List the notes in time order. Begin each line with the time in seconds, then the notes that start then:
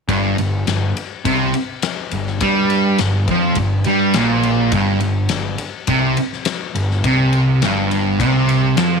0.08 G1 G2, kick, ride
0.38 G1 G2, ride
0.67 G1 G2, snare, ride
0.97 ride
1.25 C2 C3, kick, ride
1.54 ride
1.82 snare, ride
2.11 G1 G2, ride
2.27 snare
2.40 G2 G3, kick, ride
2.70 ride
2.98 G1 G2, snare, ride
3.28 F2 F3, kick, ride
3.55 G1 G2, kick, ride
3.84 G2 G3, ride
4.14 A#1 A#2, snare, ride
4.43 ride
4.72 G1 G2, kick, ride
5.00 G1 G2, ride
5.29 G1 G2, snare, ride
5.58 ride
5.87 C2 C3, kick, ride
6.17 ride
6.33 snare
6.45 snare, ride
6.75 G1 G2, ride
6.91 snare
7.04 C2 C3, kick, ride
7.33 ride
7.62 G1 G2, snare, ride
7.91 ride
8.19 C2 C3, kick, ride
8.49 ride
8.77 F2 F3, snare, ride